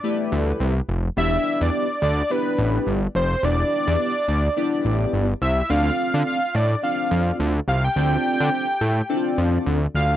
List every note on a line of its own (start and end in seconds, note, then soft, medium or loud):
0.00 0.73 A3 medium
0.00 0.73 E4 medium
0.00 0.56 D5 loud
0.04 0.73 G4 medium
0.04 0.73 B4 medium
0.32 0.53 D2 medium
0.60 0.81 C2 loud
0.89 1.09 F1 medium
1.17 1.38 E1 loud
1.17 1.86 B3 medium
1.17 1.87 D4 medium
1.17 1.87 E4 medium
1.17 1.87 G4 medium
1.17 1.87 D5 medium
1.17 1.64 E5 loud
1.61 1.70 E2 loud
1.61 2.03 D5 loud
2.02 2.23 D2 medium
2.02 2.33 D5 loud
2.30 3.00 B3 medium
2.30 3.00 D4 medium
2.30 3.00 E4 medium
2.30 3.00 G4 medium
2.30 2.87 B4 medium
2.30 3.00 D5 medium
2.59 2.79 A1 loud
2.87 3.08 G1 medium
3.15 3.36 F1 medium
3.15 3.46 C5 loud
3.43 3.64 E1 loud
3.43 4.13 B3 medium
3.43 4.13 D4 medium
3.43 4.13 E4 medium
3.43 4.13 G4 medium
3.43 4.13 D5 medium
3.43 5.14 D5 loud
3.88 3.97 E2 loud
4.28 4.49 D2 medium
4.56 5.26 B3 medium
4.56 5.26 D4 medium
4.56 5.26 E4 medium
4.56 5.26 G4 medium
4.56 5.26 D5 loud
4.85 5.06 A1 medium
5.13 5.34 G1 medium
5.42 5.62 C2 medium
5.42 5.72 E5 loud
5.70 5.91 D2 loud
5.70 6.39 C4 medium
5.70 6.39 D4 medium
5.70 6.39 F4 medium
5.70 6.39 A4 medium
5.70 6.40 D5 medium
5.70 6.26 F5 loud
6.14 6.23 D3 loud
6.27 6.57 F5 loud
6.55 6.75 A2 medium
6.55 6.83 D5 loud
6.83 7.52 C4 medium
6.83 7.52 D4 medium
6.83 7.53 F4 medium
6.83 7.53 A4 medium
6.83 7.53 D5 medium
6.83 7.36 F5 medium
7.11 7.32 F2 loud
7.40 7.60 D2 loud
7.68 7.88 C2 medium
7.68 7.83 F5 loud
7.84 9.50 G5 loud
7.96 8.17 D2 loud
7.96 8.65 C4 medium
7.96 8.66 D4 medium
7.96 8.66 F4 medium
7.96 8.66 A4 medium
7.96 8.66 D5 medium
8.40 8.50 D3 loud
8.81 9.02 A2 loud
9.09 9.79 C4 medium
9.09 9.79 D4 medium
9.09 9.17 E4 medium
9.09 9.79 A4 medium
9.09 9.79 D5 medium
9.16 9.82 F4 medium
9.38 9.59 F2 loud
9.66 9.87 D2 loud
9.95 10.15 D2 medium
9.95 10.17 F5 loud